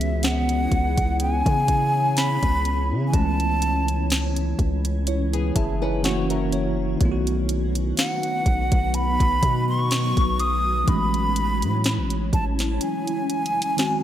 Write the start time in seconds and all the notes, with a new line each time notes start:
Already playing: C#2 E3 B3 C#4 E4 G#4 C#5 E5
0.01 closed hi-hat
0.23 F#5, snare, closed hi-hat
0.49 closed hi-hat
0.71 C#2, kick, closed hi-hat
0.98 kick, closed hi-hat
1.20 G#5, closed hi-hat
1.46 C#3, kick, closed hi-hat
1.68 kick, closed hi-hat
2.17 B5, snare, closed hi-hat
2.43 C#2, kick, closed hi-hat
2.65 closed hi-hat
2.92 C#3
3.08 E3 G#5
3.13 C#2 E3 A3 C#4 A5, kick, closed hi-hat
3.18 G#3
3.40 closed hi-hat
3.62 closed hi-hat
3.88 closed hi-hat
4.10 snare, closed hi-hat
4.36 closed hi-hat
4.59 C#2, kick, closed hi-hat
4.85 closed hi-hat
5.07 E4 C#5, closed hi-hat
5.33 B3 G#4, closed hi-hat
5.56 F#1 G#4 E5 A5, kick, closed hi-hat
5.82 D#4 E4 B4 C#5 G#5
6.03 E3 A3 A#3 C#4 E4 F#4 C#5 F#5, snare, closed hi-hat
6.10 A#3
6.30 C#4 A#4 E5, closed hi-hat
6.52 C#5, closed hi-hat
6.97 B1 D#3 F#3 A3 B3 D#4 B4, kick, closed hi-hat
7.03 B3 F4
7.12 F#4
7.27 closed hi-hat
7.49 closed hi-hat
7.75 closed hi-hat
7.97 F#5, snare, closed hi-hat
8.23 closed hi-hat
8.46 B1, kick, closed hi-hat
8.72 B1, kick, closed hi-hat
8.94 B5, closed hi-hat
9.20 B1, kick, closed hi-hat
9.43 B2, kick, closed hi-hat
9.69 C#6
9.91 snare, closed hi-hat
10.17 B1, kick, closed hi-hat
10.39 D#6, closed hi-hat
10.84 A1 E3 A3 C#4 E4 C#5 B5, kick, closed hi-hat
10.90 G#3 C#4
11.14 closed hi-hat
11.36 closed hi-hat
11.62 A2, closed hi-hat
11.84 snare, closed hi-hat
11.98 A1
12.10 closed hi-hat
12.33 A1 A5, kick, closed hi-hat
12.59 snare, closed hi-hat
12.81 G#5, closed hi-hat
13.07 closed hi-hat
13.30 closed hi-hat
13.46 closed hi-hat
13.62 closed hi-hat
13.77 D#3 F#3 G#3 C4 F#4 G#4 C5, snare, closed hi-hat